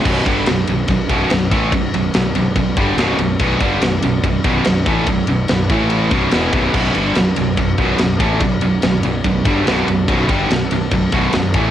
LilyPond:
<<
  \new Staff \with { instrumentName = "String section" } { \time 4/4 \key b \minor \tempo 4 = 144 << { <b fis' d''>1~ | <b fis' d''>1~ | <b fis' d''>1~ | <b fis' d''>4. <a e' a''>4 <b fis' d''>4.~ |
<b fis' d''>1~ | <b fis' d''>1~ | <b fis' d''>1 | } \\ { b'1~ | b'1~ | b'1~ | b'1~ |
b'1~ | b'2~ b'8 a'4.~ | a'1 | } >> }
  \new Staff \with { instrumentName = "Distorted electric guitar" } { \clef bass \time 4/4 \key b \minor <b,, fis, b,>8 <g, d g>8 <b,, fis,>8 <b,, fis,>8 <b,, fis,>8 <b,, fis, b,>8 <b,, fis,>8 <a, e a>8 | <b,, fis,>8 <b,, fis,>8 <b,, fis,>8 <b,, fis,>8 <b,, fis,>8 <g, d g>8 <b,, fis, b,>8 <b,, fis,>8 | <b,, fis, b,>8 <g, d g>8 <b,, fis,>8 <b,, fis,>8 <b,, fis,>8 <b,, fis, b,>8 <b,, fis,>8 <a, e a>8 | <b,, fis,>8 <b,, fis,>8 <b,, fis,>8 <a, e a>4 <b,, fis, b,>8 <e, b, e>8 <b,, fis, b,>8 |
<b,, fis, b,>8 <g, d g>8 <b,, fis,>8 <b,, fis,>8 <b,, fis,>8 <b,, fis, b,>8 <b,, fis,>8 <a, e a>8 | <b,, fis,>8 <b,, fis,>8 <b,, fis,>8 <b,, fis,>8 <b,, fis,>8 <g, d g>8 <b,, fis, b,>8 <b,, fis,>8 | <b,, fis, b,>8 <g, d g>8 <b,, fis,>8 <b,, fis,>8 <b,, fis,>8 <b,, fis, b,>8 <b,, fis,>8 <a, e a>8 | }
  \new Staff \with { instrumentName = "Distorted electric guitar" } { \clef bass \time 4/4 \key b \minor <b,, fis, b,>8 <g, d g>8 <b,, fis,>8 <b,, fis,>8 <b,, fis,>8 <b,, fis, b,>8 <b,, fis,>8 <a, e a>8 | <b,, fis,>8 <b,, fis,>8 <b,, fis,>8 <b,, fis,>8 <b,, fis,>8 <g, d g>8 <b,, fis, b,>8 <b,, fis,>8 | <b,, fis, b,>8 <g, d g>8 <b,, fis,>8 <b,, fis,>8 <b,, fis,>8 <b,, fis, b,>8 <b,, fis,>8 <a, e a>8 | <b,, fis,>8 <b,, fis,>8 <b,, fis,>8 <a, e a>4 <b,, fis, b,>8 <e, b, e>8 <b,, fis, b,>8 |
<b,, fis, b,>8 <g, d g>8 <b,, fis,>8 <b,, fis,>8 <b,, fis,>8 <b,, fis, b,>8 <b,, fis,>8 <a, e a>8 | <b,, fis,>8 <b,, fis,>8 <b,, fis,>8 <b,, fis,>8 <b,, fis,>8 <g, d g>8 <b,, fis, b,>8 <b,, fis,>8 | <b,, fis, b,>8 <g, d g>8 <b,, fis,>8 <b,, fis,>8 <b,, fis,>8 <b,, fis, b,>8 <b,, fis,>8 <a, e a>8 | }
  \new Staff \with { instrumentName = "Distorted electric guitar" } { \clef bass \time 4/4 \key b \minor <b,, fis, b,>8 <g, d g>8 <b,, fis,>8 <b,, fis,>8 <b,, fis,>8 <b,, fis, b,>8 <b,, fis,>8 <a, e a>8 | <b,, fis,>8 <b,, fis,>8 <b,, fis,>8 <b,, fis,>8 <b,, fis,>8 <g, d g>8 <b,, fis, b,>8 <b,, fis,>8 | <b,, fis, b,>8 <g, d g>8 <b,, fis,>8 <b,, fis,>8 <b,, fis,>8 <b,, fis, b,>8 <b,, fis,>8 <a, e a>8 | <b,, fis,>8 <b,, fis,>8 <b,, fis,>8 <a, e a>4 <b,, fis, b,>8 <e, b, e>8 <b,, fis, b,>8 |
<b,, fis, b,>8 <g, d g>8 <b,, fis,>8 <b,, fis,>8 <b,, fis,>8 <b,, fis, b,>8 <b,, fis,>8 <a, e a>8 | <b,, fis,>8 <b,, fis,>8 <b,, fis,>8 <b,, fis,>8 <b,, fis,>8 <g, d g>8 <b,, fis, b,>8 <b,, fis,>8 | <b,, fis, b,>8 <g, d g>8 <b,, fis,>8 <b,, fis,>8 <b,, fis,>8 <b,, fis, b,>8 <b,, fis,>8 <a, e a>8 | }
  \new Staff \with { instrumentName = "Fingered electric bass" } { \clef bass \time 4/4 \key b \minor b,,,8 g,,8 b,,,8 b,,,8 b,,,8 b,,,8 b,,,8 a,,8 | b,,,8 b,,,8 b,,,8 b,,,8 b,,,8 g,,8 b,,,8 b,,,8 | b,,,8 g,,8 b,,,8 b,,,8 b,,,8 b,,,8 b,,,8 a,,8 | b,,,8 b,,,8 b,,,8 a,,4 b,,,8 e,,8 b,,,8 |
b,,,8 g,,8 b,,,8 b,,,8 b,,,8 b,,,8 b,,,8 a,,8 | b,,,8 b,,,8 b,,,8 b,,,8 b,,,8 g,,8 b,,,8 b,,,8 | b,,,8 g,,8 b,,,8 b,,,8 b,,,8 b,,,8 b,,,8 a,,8 | }
  \new DrumStaff \with { instrumentName = "Drums" } \drummode { \time 4/4 <cymc bd>8 <bd cymr>8 <cymr sn>8 cymr8 <bd cymr>8 <bd cymr>8 <cymr sn>8 <bd cymr>8 | <bd cymr>8 cymr8 <cymr sn>8 cymr8 <bd cymr>8 <bd cymr>8 <cymr sn>8 cymr8 | <bd cymr>8 <bd cymr>8 <cymr sn>8 cymr8 <bd cymr>8 <bd cymr>8 <cymr sn>8 <bd cymr>8 | <bd cymr>8 cymr8 <cymr sn>8 <bd cymr>8 cymr8 <bd cymr>8 <cymr sn>8 <bd cymr>8 |
<cymc bd>8 cymr8 <cymr sn>8 cymr8 <bd cymr>8 <bd cymr>8 <cymr sn>8 <bd cymr>8 | <bd cymr>8 cymr8 <cymr sn>8 cymr8 <bd cymr>8 <bd cymr>8 <cymr sn>8 cymr8 | <bd cymr>8 <bd cymr>8 <cymr sn>8 cymr8 <bd cymr>8 <bd cymr>8 <cymr sn>8 <bd cymr>8 | }
>>